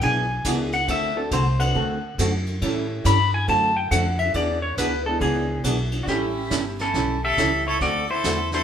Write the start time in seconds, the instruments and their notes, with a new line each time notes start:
0.01 upright bass B1, hollow-body jazz guitar E3 B3 D4 G#4, electric slide guitar G#5, kick, ride
0.44 upright bass C#2, hollow-body jazz guitar E3 B3 D4 G#4, upright piano G#3 B3 D4 E4 G#4, kick, hi-hat pedal, ride
0.72 electric slide guitar F#5, ride
0.88 upright bass D2, hollow-body jazz guitar D3 A3 C4 F#4 A4, electric slide guitar E5, kick, ride
1.15 upright piano A3 C4 D4 F#4 A4, electric slide guitar A4
1.31 upright bass C2, hollow-body jazz guitar D3 A3 C4 F#4 A4, electric slide guitar C5, kick, hi-hat pedal, ride
1.59 upright piano A3 C4 D4 F#4 B4, electric slide guitar F#5, ride
1.75 upright bass D2, hollow-body jazz guitar D3 A3 C4 F#4 A4, kick
2.18 upright bass F#2, hollow-body jazz guitar D3 A3 C4 F#4 A4, kick, hi-hat pedal, ride
2.46 ride
2.62 upright bass A2, hollow-body jazz guitar E3 G3 C#4 E4 A4, upright piano A3 C#4 E4 G4 A4, kick, ride
3.04 upright bass G2, hollow-body jazz guitar E3 G3 C#4 E4 A4, electric slide guitar B5, kick, hi-hat pedal, ride
3.34 electric slide guitar G#5
3.48 upright bass F#2, hollow-body jazz guitar D3 A3 C4 F#4 A4, electric slide guitar A5, kick, ride
3.77 electric slide guitar G5
3.91 upright bass F2, hollow-body jazz guitar D3 A3 C4 F#4 A4, electric slide guitar F#5, kick, hi-hat pedal, ride
4.19 electric slide guitar E5, ride
4.34 upright bass E2, hollow-body jazz guitar E3 B3 D4 G#4, electric slide guitar D5, kick, ride
4.62 electric slide guitar C#5
4.77 upright bass D2, hollow-body jazz guitar E3 B3 D4 G#4, electric slide guitar B4, kick, hi-hat pedal, ride
5.06 upright piano G#3 B3 D4 E4 G#4, electric slide guitar A4
5.20 upright bass C#2, hollow-body jazz guitar E3 B3 D4 G#4, electric slide guitar G#4, kick, ride
5.64 upright bass B1, hollow-body jazz guitar E3 B3 D4 G#4, kick, hi-hat pedal, ride
5.92 ride
6.02 fiddle D4, electric slide guitar F#4
6.07 upright bass A1, hollow-body jazz guitar E3 G3 C#4 E4 A4, upright piano G3 A3 C#4 E4 G4, electric slide guitar C#4 G4, fiddle E4, brush sweep, kick, snare
6.50 upright bass G1, hollow-body jazz guitar E3 G3 C#4 E4 A4, kick, snare, hi-hat pedal
6.79 electric slide guitar C#4 A4, fiddle E4, snare
6.94 upright bass B1, hollow-body jazz guitar E3 G3 C#4 E4 A4, brush sweep, kick, snare
7.24 electric slide guitar G4 E5, fiddle A4
7.37 upright bass C#2, hollow-body jazz guitar E3 G3 C#4 E4 A4, upright piano G3 A3 C#4 E4 G4, kick, snare, hi-hat pedal
7.67 electric slide guitar E4 C#5, fiddle A4
7.81 upright bass D2, hollow-body jazz guitar D3 A3 C4 F#4 A4, electric slide guitar F#4 D5, fiddle A4, brush sweep, kick, snare
8.10 electric slide guitar E4 C5, fiddle A4
8.24 upright bass E2, hollow-body jazz guitar D3 A3 C4 F#4 A4, kick, snare, hi-hat pedal
8.52 upright piano F#3 A3 C4 D4 F#4, electric slide guitar E4 C5, fiddle A4, snare